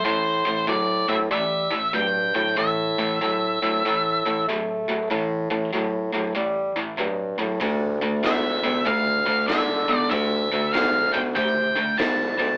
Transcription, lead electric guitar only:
0.05 0.64 C5 medium
0.69 1.06 D5 medium
1.09 1.15 E5 medium
1.32 1.91 E5 medium
1.95 2.35 G5 loud
2.36 2.58 G5 loud
2.58 4.43 E5 loud
8.26 8.87 E5 medium
8.87 9.47 F5 medium
9.47 9.97 E5 medium
9.97 10.09 D5 medium
10.11 10.72 E5 medium
10.73 11.12 F5 medium
11.13 11.19 G5 medium
11.35 12.00 G5 loud
11.98 12.37 A5 medium
12.39 12.57 A5 loud

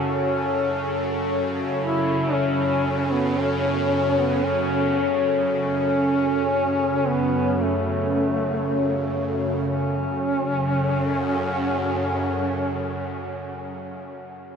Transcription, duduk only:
0.22 0.97 C#4 medium
1.81 2.34 E4 loud
2.32 3.14 C#4 loud
3.12 3.42 B3 medium
3.40 4.20 C#4 medium
4.19 4.46 B3 medium
4.44 5.23 C#4 loud
5.50 7.09 C#4 loud
7.08 7.64 B3 medium
7.62 9.19 A3 medium
9.69 13.04 C#4 medium

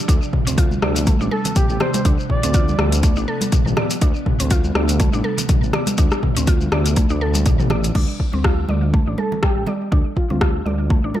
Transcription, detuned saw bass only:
0.09 0.19 D2 loud
0.47 0.79 D2 medium
0.82 1.16 D2 loud
1.20 1.29 A1 loud
1.70 1.78 A1 medium
2.05 2.16 D2 loud
2.43 2.75 D2 medium
2.79 3.13 D2 loud
3.17 3.26 A1 loud
3.66 3.75 A1 medium
4.02 4.13 D2 loud
4.39 4.72 D2 medium
4.75 5.09 D2 loud
5.13 5.22 A1 loud
5.63 5.71 A1 medium
5.98 6.09 D2 loud
6.36 6.68 D2 medium
6.72 7.06 D2 loud
7.10 7.61 D2 medium
7.59 7.92 A1 medium
7.95 8.06 D2 loud
8.34 8.65 D2 medium
8.69 9.03 D2 medium
9.07 9.16 A1 loud
9.56 9.65 A1 medium
9.92 10.03 D2 loud
10.30 10.62 D2 medium
10.66 11.00 D2 medium
11.04 11.13 A1 loud

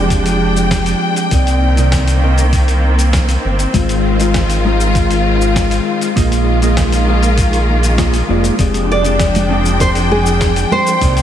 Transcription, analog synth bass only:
0.00 0.94 F1 medium
1.31 3.37 C2 medium
3.45 3.66 G1 medium
3.74 5.80 G#1 medium
6.16 8.22 A#1 medium
8.29 8.51 F1 medium
8.59 10.65 F1 medium
11.02 11.22 C2 medium

